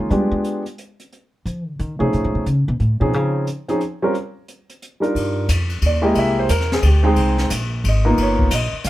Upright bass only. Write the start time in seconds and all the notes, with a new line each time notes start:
0.11 G3
0.31 G#3
1.46 F3
1.67 D3
1.79 D#3
2.00 C3
2.14 B2
2.24 A2
2.35 B2
2.46 C#3
2.68 B2
2.80 A2
3.01 B2
3.14 C#3
5.15 G2
5.49 F2
5.82 D#2
6.15 C2
6.49 E2
6.83 D2
7.16 C2
7.50 A#1
7.84 G#1
8.18 G1
8.51 A#1
8.72 muted upright bass stroke
8.85 B1